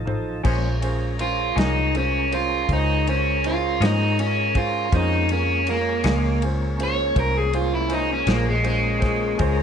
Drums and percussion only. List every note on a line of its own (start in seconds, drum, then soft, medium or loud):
0.07 mid tom medium
0.45 kick loud
0.45 crash loud
0.82 ride medium
1.19 ride medium
1.58 snare loud
1.58 ride medium
1.95 ride medium
2.32 ride medium
2.69 kick medium
2.69 ride medium
3.07 ride medium
3.44 ride medium
3.82 snare loud
3.82 ride medium
4.19 ride medium
4.55 kick medium
4.55 ride medium
4.92 kick loud
4.92 ride medium
5.29 ride medium
5.67 ride medium
6.04 snare loud
6.04 ride medium
6.42 ride medium
6.80 ride medium
7.16 kick medium
7.16 ride medium
7.53 ride medium
7.90 ride medium
8.27 snare loud
8.27 ride medium
8.64 ride medium
9.02 kick medium
9.02 snare soft
9.02 ride medium
9.39 kick loud
9.39 ride medium